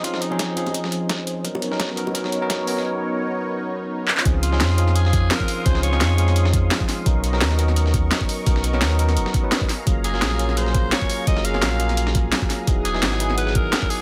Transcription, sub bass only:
X:1
M:4/4
L:1/8
Q:"Swing 16ths" 1/4=171
K:Db
V:1 name="Sub bass" clef=bass
z8 | z8 | z8 | D,,2 F,,4 z2 |
D,,2 F,,4 z2 | _C,,2 E,,4 z2 | _C,,2 E,,2 G,,, z3 | G,,,2 B,,,4 z2 |
G,,,2 B,,,4 z2 | =E,,,2 ^G,,,4 z2 |]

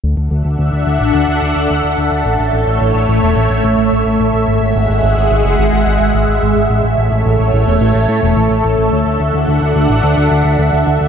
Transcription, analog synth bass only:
X:1
M:4/4
L:1/16
Q:1/4=108
K:Dlyd
V:1 name="Analog synth bass" clef=bass
D,, D,, D,, D,, D,, D,, D,, A,,, D,, D,, D,, D,, D,, D,, D,, D,, | A,,, A,,, A,,, A,,, A,,, A,,, A,,, E,,, A,,, A,,, A,,, A,,, A,,, A,,, A,,, A,,, | G,,, G,,, G,,, G,,, G,,, G,,, G,,, F,,, G,,, G,,, G,,, G,,, G,,, G,,, G,,, G,,, | A,,, A,,, A,,, A,,, A,,, A,,, A,,, E,,, A,,, A,,, A,, E,,, A,,, A,,, A,,, A,,, |
D,, D,, D,, D,, D,, D,, D,, A,,, D,, D,, D,, D,, D,, D,, D,, D,, |]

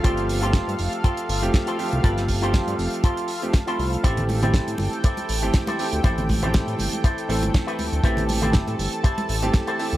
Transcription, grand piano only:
X:1
M:4/4
L:1/16
Q:"Swing 16ths" 1/4=120
K:Am
V:1 name="Grand piano"
[F,A,CG]3 [F,A,CG]8 [F,A,CG]3 [F,A,CG]2 | [F,A,CG]3 [F,A,CG]6- [F,A,CG] z [F,A,CG] z [F,A,Cb]3 | [E,A,CG]3 [E,A,CG]8 [E,A,CG]3 [E,A,CG]2 | [E,A,CG]3 [E,A,CG]6- [E,A,CG] [E,A,CA]6 |
[E,A,CG]3 [E,A,CG]8 [E,A,CG]3 [E,A,CG]2 |]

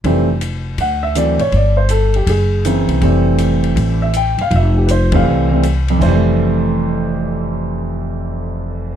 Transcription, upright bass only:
X:1
M:4/4
L:1/8
Q:"Swing" 1/4=160
K:F
V:1 name="Upright bass" clef=bass
F,,,4 D,,3 _A,,, | G,,,4 _G,,,3 C,, | F,,,4 A,,,3 G,,, | F,,,4 C,,4 |
F,,,8- | F,,,8 |]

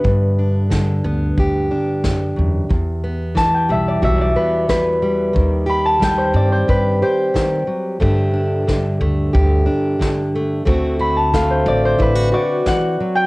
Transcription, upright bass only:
X:1
M:4/4
L:1/8
Q:1/4=90
K:G
V:1 name="Upright bass" clef=bass
G,,3 D,, D,, z F,, E,, | E,,3 B,,, B,,, z3 | _E,,3 G,, G,, z3 | G,,3 D,, D,, z3 |
D,,3 A,,, A,,, z3 |]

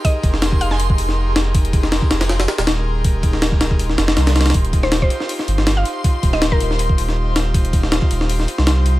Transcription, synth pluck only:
X:1
M:4/4
L:1/16
Q:"Swing 16ths" 1/4=160
K:Fm
V:1 name="Synth pluck"
e2 z4 f a3 z6 | z16 | z16 | z3 c2 c6 z2 f2 z |
z3 e2 B4 z6 z | z16 |]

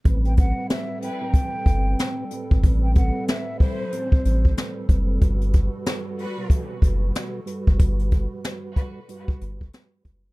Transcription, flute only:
X:1
M:4/4
L:1/16
Q:"Swing 16ths" 1/4=93
K:Ador
V:1 name="Flute"
z g f2 e2 g8- g2 | z g f2 e2 c6- c z3 | z16 | z16 |]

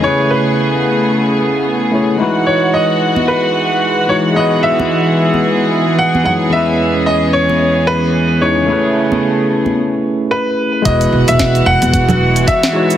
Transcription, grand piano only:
X:1
M:4/4
L:1/16
Q:"Swing 16ths" 1/4=111
K:E
V:1 name="Grand piano"
c2 B8 z6 | z2 c2 d4 B6 c2 | d2 e8- e2 f2 f2 | e4 d2 c4 B4 c2- |
c12 B4 | d3 e3 f6 e4 |]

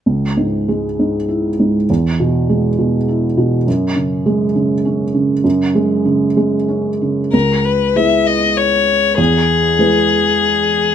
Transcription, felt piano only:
X:1
M:3/4
L:1/8
Q:1/4=99
K:C#m
V:1 name="Felt piano" clef=bass
C,, G,, G, G,, E G,, | E,, B,, G, B,, E B,, | F,, C, G, C, C C, | F,, G, C, G, C C, |
C,,2 [G,EB]4 | E,,2 [G,EB]4 |]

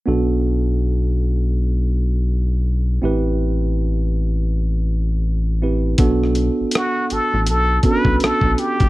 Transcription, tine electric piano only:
X:1
M:4/4
L:1/16
Q:"Swing 16ths" 1/4=81
K:Bphr
V:1 name="Tine electric piano"
[B,DFA]16 | [CEGB]12- [CEGB]2 [CEGB]2 | [B,DFA]6- [B,DFA] z3 [B,^CDFA]6 |]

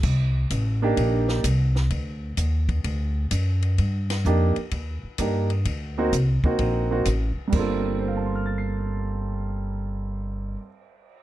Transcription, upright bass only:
X:1
M:4/4
L:1/8
Q:"Swing" 1/4=128
K:Gm
V:1 name="Upright bass" clef=bass
C,,2 A,,,2 B,,,2 C,,2 | D,,2 E,,2 D,,2 ^F,,2 | G,,2 F,, z E,, z G,,2 | D,,2 C,, z B,,,2 A,,, z |
G,,,8- | G,,,8 |]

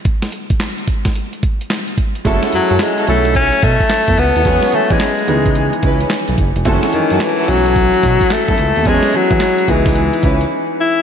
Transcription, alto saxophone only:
X:1
M:4/4
L:1/16
Q:"Swing 16ths" 1/4=109
K:Bmix
V:1 name="Alto saxophone" clef=bass
z16 | z2 F,2 G,2 A,2 C2 A,4 B,2- | B,2 A, G,6 z6 z | z2 D,2 E,2 F,6 A,4 |
G,2 F,4 E,6 z2 E2 |]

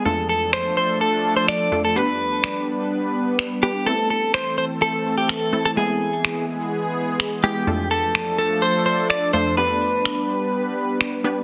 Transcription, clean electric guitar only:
X:1
M:4/4
L:1/16
Q:1/4=126
K:Ddor
V:1 name="Clean electric guitar"
A2 A2 c2 c2 A3 c d3 A | B6 z8 G2 | A2 A2 c2 c2 A3 G A3 A | ^G6 z8 =G2- |
G2 A4 A2 c2 c2 d2 c2 | B12 z4 |]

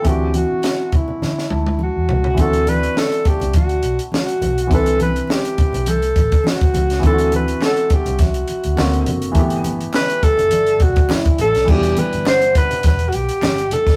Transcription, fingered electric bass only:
X:1
M:4/4
L:1/16
Q:"Swing 16ths" 1/4=103
K:Dmix
V:1 name="Fingered electric bass" clef=bass
D,,3 z4 z D,2 D,,3 E,, ^C,,2 | D,,4 z3 C,, D,,2 B,,, z3 B,,,2 | C,,4 z3 B,,, C,,2 A,,, z3 ^C,,2 | D,,4 z3 C,,3 z D,, D,,2 z2 |
G,,,4 z3 F,,, G,,,2 E,,, z G,,, z A,,, B,,, | E,,,2 z G,,,4- G,,, E,,,2 B,,, z G,,,2 z F,,, |]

